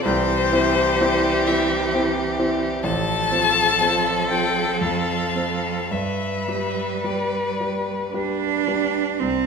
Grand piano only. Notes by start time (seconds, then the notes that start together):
0.05 C2
0.52 C4 E4 C5
1.01 C4 E4 C5
1.47 C4 E4 C5
1.94 C4 E4 C5
2.39 C4 E4 C5
2.84 A1
3.31 C4 F4 C5
3.81 C4 F4 C5
4.30 C4 F4 C5
4.81 F2
5.36 C4 A4 C5
5.91 G2
6.48 G3 G4 B4
7.04 G3 G4 B4
7.60 G3 G4 B4
8.14 G3 G4 B4
8.67 G3 G4 B4
9.21 C2